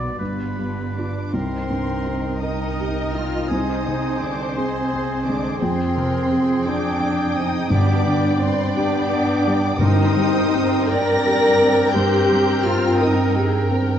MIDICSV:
0, 0, Header, 1, 12, 480
1, 0, Start_track
1, 0, Key_signature, -3, "minor"
1, 0, Tempo, 765306
1, 840, Time_signature, 6, 3, 24, 8
1, 840, Tempo, 720288
1, 2280, Tempo, 698487
1, 6600, Tempo, 730816
1, 7560, Tempo, 700935
1, 9437, End_track
2, 0, Start_track
2, 0, Title_t, "Violin section"
2, 0, Program_c, 0, 48
2, 118, Note_on_c, 0, 83, 58
2, 581, Note_off_c, 0, 83, 0
2, 608, Note_on_c, 0, 86, 59
2, 828, Note_on_c, 0, 84, 74
2, 839, Note_off_c, 0, 86, 0
2, 1551, Note_on_c, 0, 87, 72
2, 1557, Note_off_c, 0, 84, 0
2, 2027, Note_off_c, 0, 87, 0
2, 2031, Note_on_c, 0, 89, 80
2, 2264, Note_on_c, 0, 87, 82
2, 2276, Note_off_c, 0, 89, 0
2, 2758, Note_on_c, 0, 86, 77
2, 2759, Note_off_c, 0, 87, 0
2, 2997, Note_on_c, 0, 84, 81
2, 3005, Note_off_c, 0, 86, 0
2, 3480, Note_on_c, 0, 86, 80
2, 3481, Note_off_c, 0, 84, 0
2, 3726, Note_off_c, 0, 86, 0
2, 3729, Note_on_c, 0, 84, 90
2, 4439, Note_off_c, 0, 84, 0
2, 4452, Note_on_c, 0, 86, 90
2, 4930, Note_off_c, 0, 86, 0
2, 4931, Note_on_c, 0, 87, 95
2, 5169, Note_on_c, 0, 86, 95
2, 5171, Note_off_c, 0, 87, 0
2, 5647, Note_off_c, 0, 86, 0
2, 5654, Note_on_c, 0, 84, 93
2, 5890, Note_off_c, 0, 84, 0
2, 5892, Note_on_c, 0, 86, 100
2, 6592, Note_off_c, 0, 86, 0
2, 6602, Note_on_c, 0, 87, 112
2, 7327, Note_off_c, 0, 87, 0
2, 7329, Note_on_c, 0, 94, 123
2, 8039, Note_off_c, 0, 94, 0
2, 8041, Note_on_c, 0, 91, 110
2, 8508, Note_on_c, 0, 89, 107
2, 8518, Note_off_c, 0, 91, 0
2, 8750, Note_on_c, 0, 87, 91
2, 8752, Note_off_c, 0, 89, 0
2, 8989, Note_off_c, 0, 87, 0
2, 9437, End_track
3, 0, Start_track
3, 0, Title_t, "Flute"
3, 0, Program_c, 1, 73
3, 826, Note_on_c, 1, 79, 58
3, 1529, Note_off_c, 1, 79, 0
3, 1560, Note_on_c, 1, 79, 58
3, 2278, Note_on_c, 1, 80, 59
3, 2288, Note_off_c, 1, 79, 0
3, 3000, Note_off_c, 1, 80, 0
3, 3004, Note_on_c, 1, 80, 68
3, 3712, Note_off_c, 1, 80, 0
3, 3724, Note_on_c, 1, 79, 72
3, 5140, Note_off_c, 1, 79, 0
3, 5167, Note_on_c, 1, 79, 72
3, 5686, Note_off_c, 1, 79, 0
3, 5882, Note_on_c, 1, 79, 81
3, 6573, Note_off_c, 1, 79, 0
3, 6606, Note_on_c, 1, 79, 81
3, 9437, Note_off_c, 1, 79, 0
3, 9437, End_track
4, 0, Start_track
4, 0, Title_t, "Violin section"
4, 0, Program_c, 2, 48
4, 0, Note_on_c, 2, 66, 70
4, 0, Note_on_c, 2, 71, 65
4, 97, Note_off_c, 2, 66, 0
4, 116, Note_on_c, 2, 65, 46
4, 683, Note_off_c, 2, 65, 0
4, 685, Note_off_c, 2, 71, 0
4, 839, Note_on_c, 2, 70, 59
4, 840, Note_on_c, 2, 75, 59
4, 2254, Note_off_c, 2, 70, 0
4, 2291, Note_on_c, 2, 68, 63
4, 3701, Note_off_c, 2, 75, 0
4, 3735, Note_on_c, 2, 79, 69
4, 5147, Note_off_c, 2, 68, 0
4, 5161, Note_on_c, 2, 71, 77
4, 6571, Note_off_c, 2, 71, 0
4, 6579, Note_off_c, 2, 79, 0
4, 6602, Note_on_c, 2, 79, 84
4, 6606, Note_on_c, 2, 70, 88
4, 9437, Note_off_c, 2, 70, 0
4, 9437, Note_off_c, 2, 79, 0
4, 9437, End_track
5, 0, Start_track
5, 0, Title_t, "Viola section"
5, 0, Program_c, 3, 48
5, 0, Note_on_c, 3, 54, 55
5, 0, Note_on_c, 3, 59, 66
5, 98, Note_off_c, 3, 59, 0
5, 99, Note_off_c, 3, 54, 0
5, 122, Note_on_c, 3, 55, 46
5, 123, Note_on_c, 3, 62, 48
5, 686, Note_off_c, 3, 55, 0
5, 687, Note_off_c, 3, 62, 0
5, 1557, Note_on_c, 3, 75, 70
5, 2251, Note_off_c, 3, 75, 0
5, 2275, Note_on_c, 3, 72, 77
5, 3723, Note_on_c, 3, 68, 67
5, 3726, Note_off_c, 3, 72, 0
5, 3968, Note_on_c, 3, 70, 68
5, 3969, Note_off_c, 3, 68, 0
5, 4207, Note_off_c, 3, 70, 0
5, 4213, Note_on_c, 3, 68, 66
5, 4453, Note_off_c, 3, 68, 0
5, 4453, Note_on_c, 3, 79, 71
5, 5170, Note_off_c, 3, 79, 0
5, 5172, Note_on_c, 3, 74, 88
5, 6577, Note_off_c, 3, 74, 0
5, 6608, Note_on_c, 3, 72, 93
5, 7315, Note_off_c, 3, 72, 0
5, 7332, Note_on_c, 3, 74, 97
5, 8034, Note_on_c, 3, 72, 90
5, 8041, Note_off_c, 3, 74, 0
5, 8740, Note_off_c, 3, 72, 0
5, 8759, Note_on_c, 3, 70, 77
5, 8994, Note_off_c, 3, 70, 0
5, 8997, Note_on_c, 3, 68, 83
5, 9228, Note_on_c, 3, 70, 77
5, 9239, Note_off_c, 3, 68, 0
5, 9437, Note_off_c, 3, 70, 0
5, 9437, End_track
6, 0, Start_track
6, 0, Title_t, "Oboe"
6, 0, Program_c, 4, 68
6, 0, Note_on_c, 4, 74, 80
6, 108, Note_off_c, 4, 74, 0
6, 119, Note_on_c, 4, 71, 53
6, 823, Note_off_c, 4, 71, 0
6, 842, Note_on_c, 4, 70, 60
6, 1538, Note_off_c, 4, 70, 0
6, 1554, Note_on_c, 4, 70, 54
6, 2266, Note_on_c, 4, 68, 59
6, 2276, Note_off_c, 4, 70, 0
6, 2889, Note_off_c, 4, 68, 0
6, 3006, Note_on_c, 4, 68, 56
6, 3713, Note_off_c, 4, 68, 0
6, 3724, Note_on_c, 4, 68, 71
6, 5140, Note_off_c, 4, 68, 0
6, 5177, Note_on_c, 4, 67, 73
6, 5692, Note_off_c, 4, 67, 0
6, 5887, Note_on_c, 4, 67, 73
6, 6576, Note_off_c, 4, 67, 0
6, 6615, Note_on_c, 4, 70, 82
6, 9437, Note_off_c, 4, 70, 0
6, 9437, End_track
7, 0, Start_track
7, 0, Title_t, "Cello section"
7, 0, Program_c, 5, 48
7, 0, Note_on_c, 5, 47, 49
7, 109, Note_off_c, 5, 47, 0
7, 123, Note_on_c, 5, 43, 45
7, 123, Note_on_c, 5, 59, 50
7, 583, Note_off_c, 5, 59, 0
7, 597, Note_on_c, 5, 62, 48
7, 699, Note_off_c, 5, 43, 0
7, 831, Note_on_c, 5, 60, 55
7, 834, Note_off_c, 5, 62, 0
7, 1559, Note_off_c, 5, 60, 0
7, 1559, Note_on_c, 5, 63, 63
7, 2041, Note_off_c, 5, 63, 0
7, 2044, Note_on_c, 5, 65, 65
7, 2277, Note_on_c, 5, 63, 67
7, 2282, Note_off_c, 5, 65, 0
7, 2756, Note_off_c, 5, 63, 0
7, 2765, Note_on_c, 5, 62, 65
7, 3007, Note_on_c, 5, 60, 68
7, 3008, Note_off_c, 5, 62, 0
7, 3485, Note_on_c, 5, 62, 71
7, 3486, Note_off_c, 5, 60, 0
7, 3728, Note_off_c, 5, 62, 0
7, 3731, Note_on_c, 5, 60, 71
7, 4440, Note_off_c, 5, 60, 0
7, 4459, Note_on_c, 5, 62, 75
7, 4927, Note_on_c, 5, 63, 76
7, 4933, Note_off_c, 5, 62, 0
7, 5169, Note_off_c, 5, 63, 0
7, 5172, Note_on_c, 5, 62, 82
7, 5639, Note_off_c, 5, 62, 0
7, 5640, Note_on_c, 5, 60, 80
7, 5882, Note_on_c, 5, 62, 91
7, 5883, Note_off_c, 5, 60, 0
7, 6601, Note_off_c, 5, 62, 0
7, 6602, Note_on_c, 5, 63, 86
7, 7313, Note_off_c, 5, 63, 0
7, 7336, Note_on_c, 5, 70, 97
7, 8043, Note_off_c, 5, 70, 0
7, 8046, Note_on_c, 5, 67, 97
7, 8511, Note_off_c, 5, 67, 0
7, 8519, Note_on_c, 5, 65, 88
7, 8758, Note_off_c, 5, 65, 0
7, 8767, Note_on_c, 5, 63, 84
7, 9002, Note_off_c, 5, 63, 0
7, 9437, End_track
8, 0, Start_track
8, 0, Title_t, "French horn section"
8, 0, Program_c, 6, 60
8, 128, Note_on_c, 6, 59, 51
8, 586, Note_off_c, 6, 59, 0
8, 626, Note_on_c, 6, 62, 51
8, 849, Note_off_c, 6, 62, 0
8, 852, Note_on_c, 6, 60, 69
8, 1568, Note_on_c, 6, 63, 66
8, 1570, Note_off_c, 6, 60, 0
8, 2045, Note_off_c, 6, 63, 0
8, 2063, Note_on_c, 6, 65, 65
8, 2291, Note_on_c, 6, 63, 77
8, 2292, Note_off_c, 6, 65, 0
8, 2761, Note_on_c, 6, 50, 68
8, 2763, Note_off_c, 6, 63, 0
8, 3006, Note_off_c, 6, 50, 0
8, 3013, Note_on_c, 6, 60, 75
8, 3482, Note_on_c, 6, 50, 69
8, 3489, Note_off_c, 6, 60, 0
8, 3722, Note_on_c, 6, 60, 80
8, 3727, Note_off_c, 6, 50, 0
8, 4450, Note_off_c, 6, 60, 0
8, 4454, Note_on_c, 6, 62, 82
8, 4930, Note_off_c, 6, 62, 0
8, 4938, Note_on_c, 6, 63, 75
8, 5170, Note_off_c, 6, 63, 0
8, 5176, Note_on_c, 6, 62, 84
8, 5642, Note_on_c, 6, 60, 80
8, 5650, Note_off_c, 6, 62, 0
8, 5884, Note_off_c, 6, 60, 0
8, 5887, Note_on_c, 6, 62, 95
8, 6484, Note_off_c, 6, 62, 0
8, 6600, Note_on_c, 6, 63, 105
8, 7312, Note_off_c, 6, 63, 0
8, 7323, Note_on_c, 6, 70, 114
8, 8030, Note_on_c, 6, 67, 103
8, 8036, Note_off_c, 6, 70, 0
8, 8503, Note_off_c, 6, 67, 0
8, 8513, Note_on_c, 6, 65, 95
8, 8755, Note_off_c, 6, 65, 0
8, 8767, Note_on_c, 6, 63, 81
8, 9002, Note_off_c, 6, 63, 0
8, 9437, End_track
9, 0, Start_track
9, 0, Title_t, "Clarinet"
9, 0, Program_c, 7, 71
9, 831, Note_on_c, 7, 63, 54
9, 1532, Note_off_c, 7, 63, 0
9, 1559, Note_on_c, 7, 63, 59
9, 2275, Note_on_c, 7, 60, 60
9, 2285, Note_off_c, 7, 63, 0
9, 3006, Note_off_c, 7, 60, 0
9, 3014, Note_on_c, 7, 60, 59
9, 3717, Note_off_c, 7, 60, 0
9, 3729, Note_on_c, 7, 60, 72
9, 5051, Note_off_c, 7, 60, 0
9, 5167, Note_on_c, 7, 59, 77
9, 5687, Note_off_c, 7, 59, 0
9, 5888, Note_on_c, 7, 59, 72
9, 6577, Note_off_c, 7, 59, 0
9, 6607, Note_on_c, 7, 60, 80
9, 9437, Note_off_c, 7, 60, 0
9, 9437, End_track
10, 0, Start_track
10, 0, Title_t, "Felt piano"
10, 0, Program_c, 8, 0
10, 0, Control_c, 8, 64, 127
10, 0, Note_on_c, 8, 35, 48
10, 0, Note_on_c, 8, 54, 39
10, 0, Note_on_c, 8, 59, 31
10, 0, Note_on_c, 8, 66, 35
10, 102, Note_off_c, 8, 59, 0
10, 104, Note_off_c, 8, 66, 0
10, 105, Note_off_c, 8, 35, 0
10, 130, Note_on_c, 8, 43, 40
10, 138, Control_c, 8, 64, 0
10, 142, Note_off_c, 8, 54, 0
10, 237, Control_c, 8, 64, 127
10, 371, Note_on_c, 8, 55, 30
10, 616, Note_on_c, 8, 62, 30
10, 619, Note_on_c, 8, 65, 32
10, 750, Note_off_c, 8, 55, 0
10, 821, Note_off_c, 8, 62, 0
10, 822, Note_off_c, 8, 43, 0
10, 823, Note_off_c, 8, 65, 0
10, 838, Note_on_c, 8, 36, 51
10, 851, Control_c, 8, 64, 0
10, 972, Control_c, 8, 64, 127
10, 1083, Note_on_c, 8, 43, 42
10, 1322, Note_on_c, 8, 63, 41
10, 1468, Note_off_c, 8, 43, 0
10, 1565, Note_on_c, 8, 70, 46
10, 1708, Note_off_c, 8, 63, 0
10, 1815, Note_on_c, 8, 67, 44
10, 1948, Note_off_c, 8, 70, 0
10, 2045, Note_on_c, 8, 63, 43
10, 2192, Note_off_c, 8, 67, 0
10, 2253, Note_off_c, 8, 36, 0
10, 2282, Note_off_c, 8, 63, 0
10, 2288, Note_on_c, 8, 36, 54
10, 2294, Control_c, 8, 64, 0
10, 2395, Control_c, 8, 64, 127
10, 2537, Note_on_c, 8, 48, 45
10, 2770, Note_on_c, 8, 60, 48
10, 2919, Note_off_c, 8, 48, 0
10, 3021, Note_on_c, 8, 68, 48
10, 3154, Note_off_c, 8, 60, 0
10, 3265, Note_on_c, 8, 60, 48
10, 3397, Note_off_c, 8, 68, 0
10, 3511, Note_on_c, 8, 56, 47
10, 3641, Note_off_c, 8, 60, 0
10, 3705, Note_off_c, 8, 36, 0
10, 3738, Note_on_c, 8, 41, 64
10, 3741, Note_off_c, 8, 56, 0
10, 3742, Control_c, 8, 64, 0
10, 3848, Control_c, 8, 64, 127
10, 3977, Note_on_c, 8, 48, 51
10, 4223, Note_on_c, 8, 60, 54
10, 4360, Note_off_c, 8, 48, 0
10, 4454, Note_on_c, 8, 68, 58
10, 4602, Note_off_c, 8, 60, 0
10, 4689, Note_on_c, 8, 79, 53
10, 4835, Note_off_c, 8, 68, 0
10, 4933, Note_on_c, 8, 60, 50
10, 5073, Note_off_c, 8, 79, 0
10, 5147, Note_off_c, 8, 41, 0
10, 5166, Note_on_c, 8, 43, 73
10, 5172, Note_off_c, 8, 60, 0
10, 5183, Control_c, 8, 64, 0
10, 5292, Control_c, 8, 64, 127
10, 5416, Note_on_c, 8, 50, 58
10, 5659, Note_on_c, 8, 62, 59
10, 5794, Note_off_c, 8, 50, 0
10, 5902, Note_on_c, 8, 67, 59
10, 6037, Note_off_c, 8, 62, 0
10, 6144, Note_on_c, 8, 59, 57
10, 6277, Note_off_c, 8, 67, 0
10, 6385, Note_on_c, 8, 55, 60
10, 6516, Note_off_c, 8, 59, 0
10, 6574, Note_off_c, 8, 43, 0
10, 6613, Note_off_c, 8, 55, 0
10, 6614, Note_on_c, 8, 43, 79
10, 6615, Control_c, 8, 64, 0
10, 6741, Control_c, 8, 64, 127
10, 6852, Note_on_c, 8, 55, 61
10, 7095, Note_on_c, 8, 60, 64
10, 7238, Note_off_c, 8, 55, 0
10, 7338, Note_on_c, 8, 70, 64
10, 7475, Note_off_c, 8, 60, 0
10, 7570, Note_on_c, 8, 67, 63
10, 7712, Note_off_c, 8, 70, 0
10, 7813, Note_on_c, 8, 60, 59
10, 7947, Note_off_c, 8, 67, 0
10, 8017, Note_off_c, 8, 43, 0
10, 8047, Note_on_c, 8, 43, 76
10, 8051, Control_c, 8, 64, 0
10, 8160, Control_c, 8, 64, 127
10, 8187, Note_off_c, 8, 60, 0
10, 8296, Note_on_c, 8, 55, 60
10, 8526, Note_on_c, 8, 60, 66
10, 8670, Note_off_c, 8, 55, 0
10, 8769, Note_on_c, 8, 70, 65
10, 8906, Note_off_c, 8, 60, 0
10, 9010, Note_on_c, 8, 67, 58
10, 9149, Note_off_c, 8, 70, 0
10, 9248, Note_on_c, 8, 60, 59
10, 9392, Note_off_c, 8, 67, 0
10, 9437, Note_off_c, 8, 43, 0
10, 9437, Note_off_c, 8, 60, 0
10, 9437, End_track
11, 0, Start_track
11, 0, Title_t, "Timpani"
11, 0, Program_c, 10, 47
11, 5173, Note_on_c, 10, 43, 81
11, 5861, Note_off_c, 10, 43, 0
11, 6601, Note_on_c, 10, 43, 90
11, 7300, Note_off_c, 10, 43, 0
11, 9437, End_track
12, 0, Start_track
12, 0, Title_t, "Double bass section"
12, 0, Program_c, 11, 48
12, 0, Note_on_c, 11, 35, 53
12, 108, Note_off_c, 11, 35, 0
12, 115, Note_on_c, 11, 31, 44
12, 696, Note_off_c, 11, 31, 0
12, 831, Note_on_c, 11, 36, 58
12, 3697, Note_off_c, 11, 36, 0
12, 3724, Note_on_c, 11, 41, 63
12, 5140, Note_off_c, 11, 41, 0
12, 5169, Note_on_c, 11, 43, 74
12, 6575, Note_off_c, 11, 43, 0
12, 6601, Note_on_c, 11, 43, 79
12, 9437, Note_off_c, 11, 43, 0
12, 9437, End_track
0, 0, End_of_file